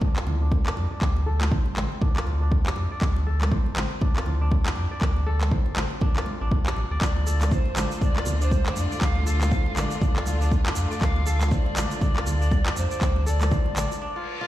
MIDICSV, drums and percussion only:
0, 0, Header, 1, 2, 480
1, 0, Start_track
1, 0, Key_signature, -1, "minor"
1, 0, Tempo, 500000
1, 975, Time_signature, 4, 2, 24, 8
1, 13891, End_track
2, 0, Start_track
2, 0, Title_t, "Drums"
2, 9, Note_on_c, 9, 63, 86
2, 15, Note_on_c, 9, 36, 110
2, 15, Note_on_c, 9, 47, 75
2, 105, Note_off_c, 9, 63, 0
2, 111, Note_off_c, 9, 36, 0
2, 111, Note_off_c, 9, 47, 0
2, 157, Note_on_c, 9, 39, 75
2, 253, Note_off_c, 9, 39, 0
2, 256, Note_on_c, 9, 62, 55
2, 259, Note_on_c, 9, 64, 81
2, 352, Note_off_c, 9, 62, 0
2, 355, Note_off_c, 9, 64, 0
2, 495, Note_on_c, 9, 36, 104
2, 497, Note_on_c, 9, 62, 43
2, 500, Note_on_c, 9, 63, 104
2, 591, Note_off_c, 9, 36, 0
2, 593, Note_off_c, 9, 62, 0
2, 596, Note_off_c, 9, 63, 0
2, 636, Note_on_c, 9, 39, 91
2, 732, Note_off_c, 9, 39, 0
2, 739, Note_on_c, 9, 62, 51
2, 835, Note_off_c, 9, 62, 0
2, 975, Note_on_c, 9, 36, 116
2, 976, Note_on_c, 9, 39, 91
2, 1071, Note_off_c, 9, 36, 0
2, 1072, Note_off_c, 9, 39, 0
2, 1119, Note_on_c, 9, 62, 53
2, 1215, Note_off_c, 9, 62, 0
2, 1351, Note_on_c, 9, 62, 41
2, 1353, Note_on_c, 9, 63, 102
2, 1357, Note_on_c, 9, 39, 78
2, 1447, Note_off_c, 9, 62, 0
2, 1449, Note_off_c, 9, 63, 0
2, 1453, Note_off_c, 9, 39, 0
2, 1454, Note_on_c, 9, 36, 107
2, 1457, Note_on_c, 9, 64, 94
2, 1550, Note_off_c, 9, 36, 0
2, 1553, Note_off_c, 9, 64, 0
2, 1591, Note_on_c, 9, 62, 50
2, 1687, Note_off_c, 9, 62, 0
2, 1695, Note_on_c, 9, 39, 91
2, 1695, Note_on_c, 9, 47, 77
2, 1698, Note_on_c, 9, 63, 113
2, 1791, Note_off_c, 9, 39, 0
2, 1791, Note_off_c, 9, 47, 0
2, 1794, Note_off_c, 9, 63, 0
2, 1842, Note_on_c, 9, 62, 39
2, 1935, Note_on_c, 9, 36, 121
2, 1935, Note_on_c, 9, 47, 77
2, 1938, Note_off_c, 9, 62, 0
2, 1939, Note_on_c, 9, 64, 82
2, 2031, Note_off_c, 9, 36, 0
2, 2031, Note_off_c, 9, 47, 0
2, 2035, Note_off_c, 9, 64, 0
2, 2078, Note_on_c, 9, 39, 80
2, 2174, Note_off_c, 9, 39, 0
2, 2176, Note_on_c, 9, 62, 51
2, 2178, Note_on_c, 9, 63, 59
2, 2272, Note_off_c, 9, 62, 0
2, 2274, Note_off_c, 9, 63, 0
2, 2415, Note_on_c, 9, 36, 106
2, 2420, Note_on_c, 9, 62, 35
2, 2511, Note_off_c, 9, 36, 0
2, 2516, Note_off_c, 9, 62, 0
2, 2557, Note_on_c, 9, 39, 96
2, 2649, Note_on_c, 9, 62, 57
2, 2653, Note_off_c, 9, 39, 0
2, 2745, Note_off_c, 9, 62, 0
2, 2895, Note_on_c, 9, 36, 121
2, 2895, Note_on_c, 9, 39, 98
2, 2991, Note_off_c, 9, 36, 0
2, 2991, Note_off_c, 9, 39, 0
2, 3037, Note_on_c, 9, 62, 52
2, 3133, Note_off_c, 9, 62, 0
2, 3276, Note_on_c, 9, 62, 39
2, 3277, Note_on_c, 9, 39, 84
2, 3281, Note_on_c, 9, 63, 101
2, 3372, Note_off_c, 9, 62, 0
2, 3373, Note_off_c, 9, 39, 0
2, 3375, Note_on_c, 9, 36, 110
2, 3376, Note_on_c, 9, 64, 98
2, 3377, Note_off_c, 9, 63, 0
2, 3471, Note_off_c, 9, 36, 0
2, 3472, Note_off_c, 9, 64, 0
2, 3517, Note_on_c, 9, 62, 48
2, 3613, Note_off_c, 9, 62, 0
2, 3614, Note_on_c, 9, 39, 94
2, 3614, Note_on_c, 9, 47, 75
2, 3616, Note_on_c, 9, 63, 114
2, 3710, Note_off_c, 9, 39, 0
2, 3710, Note_off_c, 9, 47, 0
2, 3712, Note_off_c, 9, 63, 0
2, 3751, Note_on_c, 9, 62, 36
2, 3847, Note_off_c, 9, 62, 0
2, 3851, Note_on_c, 9, 63, 89
2, 3854, Note_on_c, 9, 47, 76
2, 3855, Note_on_c, 9, 36, 122
2, 3947, Note_off_c, 9, 63, 0
2, 3950, Note_off_c, 9, 47, 0
2, 3951, Note_off_c, 9, 36, 0
2, 3996, Note_on_c, 9, 39, 79
2, 4087, Note_on_c, 9, 64, 82
2, 4091, Note_on_c, 9, 62, 50
2, 4092, Note_off_c, 9, 39, 0
2, 4183, Note_off_c, 9, 64, 0
2, 4187, Note_off_c, 9, 62, 0
2, 4332, Note_on_c, 9, 63, 106
2, 4334, Note_on_c, 9, 36, 108
2, 4334, Note_on_c, 9, 62, 36
2, 4428, Note_off_c, 9, 63, 0
2, 4430, Note_off_c, 9, 36, 0
2, 4430, Note_off_c, 9, 62, 0
2, 4475, Note_on_c, 9, 39, 95
2, 4568, Note_on_c, 9, 62, 47
2, 4571, Note_off_c, 9, 39, 0
2, 4664, Note_off_c, 9, 62, 0
2, 4814, Note_on_c, 9, 36, 115
2, 4814, Note_on_c, 9, 39, 94
2, 4910, Note_off_c, 9, 36, 0
2, 4910, Note_off_c, 9, 39, 0
2, 4958, Note_on_c, 9, 62, 46
2, 5054, Note_off_c, 9, 62, 0
2, 5193, Note_on_c, 9, 62, 36
2, 5195, Note_on_c, 9, 39, 77
2, 5195, Note_on_c, 9, 63, 95
2, 5289, Note_off_c, 9, 62, 0
2, 5291, Note_off_c, 9, 39, 0
2, 5291, Note_off_c, 9, 63, 0
2, 5294, Note_on_c, 9, 36, 111
2, 5302, Note_on_c, 9, 64, 94
2, 5390, Note_off_c, 9, 36, 0
2, 5398, Note_off_c, 9, 64, 0
2, 5433, Note_on_c, 9, 62, 48
2, 5529, Note_off_c, 9, 62, 0
2, 5530, Note_on_c, 9, 63, 106
2, 5533, Note_on_c, 9, 39, 94
2, 5533, Note_on_c, 9, 47, 74
2, 5626, Note_off_c, 9, 63, 0
2, 5629, Note_off_c, 9, 39, 0
2, 5629, Note_off_c, 9, 47, 0
2, 5669, Note_on_c, 9, 62, 35
2, 5765, Note_off_c, 9, 62, 0
2, 5770, Note_on_c, 9, 64, 79
2, 5774, Note_on_c, 9, 36, 121
2, 5774, Note_on_c, 9, 47, 75
2, 5866, Note_off_c, 9, 64, 0
2, 5870, Note_off_c, 9, 36, 0
2, 5870, Note_off_c, 9, 47, 0
2, 5916, Note_on_c, 9, 39, 80
2, 6009, Note_on_c, 9, 62, 46
2, 6012, Note_off_c, 9, 39, 0
2, 6012, Note_on_c, 9, 63, 65
2, 6105, Note_off_c, 9, 62, 0
2, 6108, Note_off_c, 9, 63, 0
2, 6253, Note_on_c, 9, 62, 38
2, 6254, Note_on_c, 9, 36, 105
2, 6349, Note_off_c, 9, 62, 0
2, 6350, Note_off_c, 9, 36, 0
2, 6396, Note_on_c, 9, 39, 96
2, 6492, Note_off_c, 9, 39, 0
2, 6495, Note_on_c, 9, 62, 47
2, 6591, Note_off_c, 9, 62, 0
2, 6734, Note_on_c, 9, 36, 114
2, 6735, Note_on_c, 9, 39, 91
2, 6742, Note_on_c, 9, 82, 40
2, 6830, Note_off_c, 9, 36, 0
2, 6831, Note_off_c, 9, 39, 0
2, 6838, Note_off_c, 9, 82, 0
2, 6879, Note_on_c, 9, 62, 50
2, 6975, Note_off_c, 9, 62, 0
2, 6976, Note_on_c, 9, 82, 93
2, 7072, Note_off_c, 9, 82, 0
2, 7106, Note_on_c, 9, 62, 37
2, 7117, Note_on_c, 9, 39, 78
2, 7117, Note_on_c, 9, 63, 104
2, 7117, Note_on_c, 9, 82, 52
2, 7202, Note_off_c, 9, 62, 0
2, 7213, Note_off_c, 9, 39, 0
2, 7213, Note_off_c, 9, 63, 0
2, 7213, Note_off_c, 9, 82, 0
2, 7213, Note_on_c, 9, 82, 37
2, 7214, Note_on_c, 9, 36, 110
2, 7215, Note_on_c, 9, 64, 91
2, 7309, Note_off_c, 9, 82, 0
2, 7310, Note_off_c, 9, 36, 0
2, 7311, Note_off_c, 9, 64, 0
2, 7348, Note_on_c, 9, 62, 53
2, 7444, Note_off_c, 9, 62, 0
2, 7454, Note_on_c, 9, 39, 93
2, 7454, Note_on_c, 9, 47, 80
2, 7455, Note_on_c, 9, 63, 111
2, 7456, Note_on_c, 9, 82, 82
2, 7550, Note_off_c, 9, 39, 0
2, 7550, Note_off_c, 9, 47, 0
2, 7551, Note_off_c, 9, 63, 0
2, 7552, Note_off_c, 9, 82, 0
2, 7596, Note_on_c, 9, 82, 56
2, 7597, Note_on_c, 9, 62, 37
2, 7692, Note_off_c, 9, 82, 0
2, 7693, Note_off_c, 9, 62, 0
2, 7694, Note_on_c, 9, 36, 114
2, 7694, Note_on_c, 9, 63, 89
2, 7695, Note_on_c, 9, 47, 78
2, 7697, Note_on_c, 9, 82, 36
2, 7790, Note_off_c, 9, 36, 0
2, 7790, Note_off_c, 9, 63, 0
2, 7791, Note_off_c, 9, 47, 0
2, 7793, Note_off_c, 9, 82, 0
2, 7836, Note_on_c, 9, 39, 81
2, 7927, Note_on_c, 9, 82, 88
2, 7930, Note_on_c, 9, 62, 49
2, 7930, Note_on_c, 9, 64, 91
2, 7932, Note_off_c, 9, 39, 0
2, 8023, Note_off_c, 9, 82, 0
2, 8026, Note_off_c, 9, 62, 0
2, 8026, Note_off_c, 9, 64, 0
2, 8078, Note_on_c, 9, 82, 54
2, 8170, Note_on_c, 9, 62, 40
2, 8173, Note_on_c, 9, 63, 99
2, 8174, Note_off_c, 9, 82, 0
2, 8174, Note_on_c, 9, 36, 101
2, 8177, Note_on_c, 9, 82, 40
2, 8266, Note_off_c, 9, 62, 0
2, 8269, Note_off_c, 9, 63, 0
2, 8270, Note_off_c, 9, 36, 0
2, 8273, Note_off_c, 9, 82, 0
2, 8316, Note_on_c, 9, 39, 95
2, 8411, Note_on_c, 9, 82, 91
2, 8412, Note_off_c, 9, 39, 0
2, 8414, Note_on_c, 9, 62, 48
2, 8507, Note_off_c, 9, 82, 0
2, 8510, Note_off_c, 9, 62, 0
2, 8559, Note_on_c, 9, 82, 47
2, 8654, Note_off_c, 9, 82, 0
2, 8654, Note_on_c, 9, 36, 113
2, 8654, Note_on_c, 9, 82, 36
2, 8655, Note_on_c, 9, 39, 84
2, 8750, Note_off_c, 9, 36, 0
2, 8750, Note_off_c, 9, 82, 0
2, 8751, Note_off_c, 9, 39, 0
2, 8787, Note_on_c, 9, 62, 51
2, 8883, Note_off_c, 9, 62, 0
2, 8897, Note_on_c, 9, 82, 78
2, 8993, Note_off_c, 9, 82, 0
2, 9032, Note_on_c, 9, 63, 97
2, 9036, Note_on_c, 9, 39, 76
2, 9040, Note_on_c, 9, 62, 40
2, 9040, Note_on_c, 9, 82, 55
2, 9127, Note_on_c, 9, 64, 87
2, 9128, Note_off_c, 9, 63, 0
2, 9132, Note_off_c, 9, 39, 0
2, 9132, Note_off_c, 9, 82, 0
2, 9132, Note_on_c, 9, 82, 37
2, 9134, Note_on_c, 9, 36, 103
2, 9136, Note_off_c, 9, 62, 0
2, 9223, Note_off_c, 9, 64, 0
2, 9228, Note_off_c, 9, 82, 0
2, 9230, Note_off_c, 9, 36, 0
2, 9275, Note_on_c, 9, 62, 49
2, 9371, Note_off_c, 9, 62, 0
2, 9375, Note_on_c, 9, 39, 91
2, 9375, Note_on_c, 9, 47, 83
2, 9376, Note_on_c, 9, 82, 78
2, 9379, Note_on_c, 9, 63, 93
2, 9471, Note_off_c, 9, 39, 0
2, 9471, Note_off_c, 9, 47, 0
2, 9472, Note_off_c, 9, 82, 0
2, 9475, Note_off_c, 9, 63, 0
2, 9512, Note_on_c, 9, 82, 53
2, 9514, Note_on_c, 9, 62, 41
2, 9608, Note_off_c, 9, 82, 0
2, 9610, Note_off_c, 9, 62, 0
2, 9612, Note_on_c, 9, 64, 83
2, 9615, Note_on_c, 9, 36, 113
2, 9615, Note_on_c, 9, 47, 82
2, 9624, Note_on_c, 9, 82, 34
2, 9708, Note_off_c, 9, 64, 0
2, 9711, Note_off_c, 9, 36, 0
2, 9711, Note_off_c, 9, 47, 0
2, 9720, Note_off_c, 9, 82, 0
2, 9757, Note_on_c, 9, 39, 77
2, 9853, Note_off_c, 9, 39, 0
2, 9854, Note_on_c, 9, 63, 57
2, 9854, Note_on_c, 9, 82, 85
2, 9855, Note_on_c, 9, 62, 48
2, 9950, Note_off_c, 9, 63, 0
2, 9950, Note_off_c, 9, 82, 0
2, 9951, Note_off_c, 9, 62, 0
2, 9997, Note_on_c, 9, 82, 54
2, 10093, Note_off_c, 9, 82, 0
2, 10093, Note_on_c, 9, 62, 42
2, 10094, Note_on_c, 9, 36, 101
2, 10095, Note_on_c, 9, 82, 37
2, 10189, Note_off_c, 9, 62, 0
2, 10190, Note_off_c, 9, 36, 0
2, 10191, Note_off_c, 9, 82, 0
2, 10237, Note_on_c, 9, 39, 89
2, 10326, Note_on_c, 9, 82, 93
2, 10332, Note_on_c, 9, 62, 49
2, 10333, Note_off_c, 9, 39, 0
2, 10422, Note_off_c, 9, 82, 0
2, 10428, Note_off_c, 9, 62, 0
2, 10476, Note_on_c, 9, 82, 43
2, 10572, Note_off_c, 9, 82, 0
2, 10574, Note_on_c, 9, 36, 110
2, 10574, Note_on_c, 9, 39, 86
2, 10576, Note_on_c, 9, 82, 38
2, 10670, Note_off_c, 9, 36, 0
2, 10670, Note_off_c, 9, 39, 0
2, 10672, Note_off_c, 9, 82, 0
2, 10714, Note_on_c, 9, 62, 60
2, 10810, Note_off_c, 9, 62, 0
2, 10812, Note_on_c, 9, 82, 91
2, 10908, Note_off_c, 9, 82, 0
2, 10952, Note_on_c, 9, 82, 49
2, 10955, Note_on_c, 9, 39, 73
2, 10956, Note_on_c, 9, 62, 41
2, 10957, Note_on_c, 9, 63, 98
2, 11048, Note_off_c, 9, 82, 0
2, 11049, Note_on_c, 9, 64, 85
2, 11051, Note_off_c, 9, 39, 0
2, 11052, Note_off_c, 9, 62, 0
2, 11053, Note_off_c, 9, 63, 0
2, 11053, Note_on_c, 9, 82, 39
2, 11054, Note_on_c, 9, 36, 100
2, 11145, Note_off_c, 9, 64, 0
2, 11149, Note_off_c, 9, 82, 0
2, 11150, Note_off_c, 9, 36, 0
2, 11195, Note_on_c, 9, 62, 54
2, 11291, Note_off_c, 9, 62, 0
2, 11291, Note_on_c, 9, 63, 95
2, 11293, Note_on_c, 9, 82, 85
2, 11295, Note_on_c, 9, 39, 88
2, 11295, Note_on_c, 9, 47, 86
2, 11387, Note_off_c, 9, 63, 0
2, 11389, Note_off_c, 9, 82, 0
2, 11391, Note_off_c, 9, 39, 0
2, 11391, Note_off_c, 9, 47, 0
2, 11429, Note_on_c, 9, 62, 39
2, 11433, Note_on_c, 9, 82, 50
2, 11525, Note_off_c, 9, 62, 0
2, 11529, Note_off_c, 9, 82, 0
2, 11529, Note_on_c, 9, 63, 77
2, 11533, Note_on_c, 9, 82, 39
2, 11534, Note_on_c, 9, 36, 111
2, 11534, Note_on_c, 9, 47, 86
2, 11625, Note_off_c, 9, 63, 0
2, 11629, Note_off_c, 9, 82, 0
2, 11630, Note_off_c, 9, 36, 0
2, 11630, Note_off_c, 9, 47, 0
2, 11676, Note_on_c, 9, 39, 75
2, 11772, Note_off_c, 9, 39, 0
2, 11773, Note_on_c, 9, 64, 83
2, 11774, Note_on_c, 9, 82, 83
2, 11776, Note_on_c, 9, 62, 54
2, 11869, Note_off_c, 9, 64, 0
2, 11870, Note_off_c, 9, 82, 0
2, 11872, Note_off_c, 9, 62, 0
2, 11921, Note_on_c, 9, 82, 51
2, 12013, Note_on_c, 9, 63, 108
2, 12014, Note_on_c, 9, 36, 96
2, 12015, Note_off_c, 9, 82, 0
2, 12015, Note_on_c, 9, 62, 38
2, 12015, Note_on_c, 9, 82, 34
2, 12109, Note_off_c, 9, 63, 0
2, 12110, Note_off_c, 9, 36, 0
2, 12111, Note_off_c, 9, 62, 0
2, 12111, Note_off_c, 9, 82, 0
2, 12156, Note_on_c, 9, 39, 89
2, 12252, Note_off_c, 9, 39, 0
2, 12252, Note_on_c, 9, 62, 54
2, 12255, Note_on_c, 9, 82, 86
2, 12348, Note_off_c, 9, 62, 0
2, 12351, Note_off_c, 9, 82, 0
2, 12393, Note_on_c, 9, 82, 49
2, 12489, Note_off_c, 9, 82, 0
2, 12494, Note_on_c, 9, 36, 108
2, 12495, Note_on_c, 9, 39, 92
2, 12495, Note_on_c, 9, 82, 38
2, 12590, Note_off_c, 9, 36, 0
2, 12591, Note_off_c, 9, 39, 0
2, 12591, Note_off_c, 9, 82, 0
2, 12635, Note_on_c, 9, 62, 54
2, 12731, Note_off_c, 9, 62, 0
2, 12738, Note_on_c, 9, 82, 87
2, 12834, Note_off_c, 9, 82, 0
2, 12871, Note_on_c, 9, 82, 47
2, 12873, Note_on_c, 9, 63, 103
2, 12875, Note_on_c, 9, 39, 76
2, 12882, Note_on_c, 9, 62, 40
2, 12967, Note_off_c, 9, 82, 0
2, 12969, Note_off_c, 9, 63, 0
2, 12971, Note_off_c, 9, 39, 0
2, 12971, Note_on_c, 9, 64, 98
2, 12974, Note_on_c, 9, 36, 102
2, 12975, Note_on_c, 9, 63, 59
2, 12977, Note_on_c, 9, 82, 36
2, 12978, Note_off_c, 9, 62, 0
2, 13067, Note_off_c, 9, 64, 0
2, 13070, Note_off_c, 9, 36, 0
2, 13071, Note_off_c, 9, 63, 0
2, 13073, Note_off_c, 9, 82, 0
2, 13111, Note_on_c, 9, 62, 56
2, 13207, Note_off_c, 9, 62, 0
2, 13214, Note_on_c, 9, 39, 90
2, 13214, Note_on_c, 9, 47, 84
2, 13216, Note_on_c, 9, 63, 92
2, 13217, Note_on_c, 9, 82, 80
2, 13310, Note_off_c, 9, 39, 0
2, 13310, Note_off_c, 9, 47, 0
2, 13312, Note_off_c, 9, 63, 0
2, 13313, Note_off_c, 9, 82, 0
2, 13358, Note_on_c, 9, 82, 50
2, 13361, Note_on_c, 9, 62, 42
2, 13454, Note_off_c, 9, 82, 0
2, 13457, Note_off_c, 9, 62, 0
2, 13891, End_track
0, 0, End_of_file